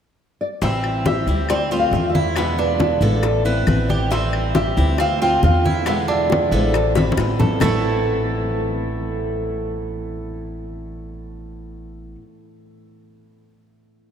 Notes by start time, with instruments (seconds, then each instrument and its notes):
0.41 nylon-string guitar D5
0.61 upright bass A1, steel-string acoustic guitar E3 G3 C4 E4, cuban tres C4, nylon-string guitar E5, high bongo, high conga
0.84 high bongo, high conga, claves
1.06 cuban tres G4, nylon-string guitar E5, high bongo, high conga
1.27 upright bass D2, steel-string acoustic guitar G3 C4 E4, high bongo
1.49 cuban tres C4, nylon-string guitar D5, muted steel-string acoustic guitar stroke, high bongo, high conga, claves
1.71 steel-string acoustic guitar A3 C4 F4, cuban tres F4, high conga
1.79 nylon-string guitar F5
1.91 upright bass E2, steel-string acoustic guitar D3 A3 C4, high bongo, low bongo, high conga
1.95 steel-string acoustic guitar F4
2.09 nylon-string guitar E5
2.15 cuban tres E4, high bongo, high conga
2.36 steel-string acoustic guitar B2 D3 G#3 B3 E4, cuban tres B3, nylon-string guitar E5, high bongo, high conga, claves
2.58 cuban tres D4, nylon-string guitar B4, high bongo, high conga
2.80 high bongo, high conga
3.01 upright bass A1, steel-string acoustic guitar D3 G#3 B3 E4, cuban tres A4, high bongo, high conga
3.23 muted steel-string acoustic guitar stroke, high bongo, high conga, claves
3.45 steel-string acoustic guitar B3 C4 E4, cuban tres B4, high conga
3.67 upright bass A1, steel-string acoustic guitar E3 B3 C4 E4, high bongo, low bongo, high conga, claves
3.88 cuban tres G4, nylon-string guitar D5, high bongo, high conga
4.11 steel-string acoustic guitar E3 G3 C4 E4, cuban tres C4, nylon-string guitar E5, high bongo
4.33 high bongo, high conga, claves
4.55 cuban tres G4, nylon-string guitar E5, high bongo, high conga
4.77 upright bass D2, steel-string acoustic guitar G3 C4 E4, high bongo
4.98 cuban tres C4, nylon-string guitar F5, muted steel-string acoustic guitar stroke, high bongo, high conga, claves
5.22 steel-string acoustic guitar A3 C4 F4, cuban tres F4, nylon-string guitar G5, high conga
5.43 upright bass E2, steel-string acoustic guitar D3 A3 C4 F4, nylon-string guitar F5, high bongo, low bongo, high conga
5.65 cuban tres E4, high bongo, high conga
5.86 steel-string acoustic guitar B2 D3 G#3 B3 E4, cuban tres B3, nylon-string guitar E5, high bongo, high conga, claves
6.08 cuban tres D4, nylon-string guitar E5, high bongo, high conga
6.30 nylon-string guitar D5, high bongo, high conga
6.51 upright bass A1, steel-string acoustic guitar D3 G#3 B3 E4, cuban tres A4, nylon-string guitar C5, high bongo, high conga
6.74 muted steel-string acoustic guitar stroke, high bongo, high conga, claves
6.95 steel-string acoustic guitar B3 C4 E4, cuban tres B5, high bongo, high conga
7.12 high conga
7.17 upright bass A1, steel-string acoustic guitar E3 B3 C4 E4, high bongo, claves
7.40 cuban tres A4, low bongo, low conga
7.60 upright bass A1, steel-string acoustic guitar A2 E3 B3 C4, cuban tres A3 E4 A4, nylon-string guitar A4, low bongo, low conga, claves
7.65 steel-string acoustic guitar E4